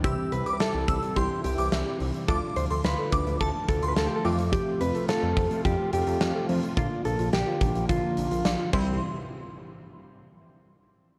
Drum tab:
CC |----------------|----------------|----------------|--------------x-|
HH |x-xxx-xxx-xxx-ox|x-xxx-xxx-xxx-ox|x-xxx-oxx-xxx-ox|x-xxx-xxx-xxx---|
SD |----o-------o---|----o-------o---|----o-------o---|----o-------o---|
BD |o-----o-o-------|o-----o-o-o-----|o-----o-o-------|o-----o-o-----o-|

CC |----------------|
HH |----------------|
SD |----------------|
BD |----------------|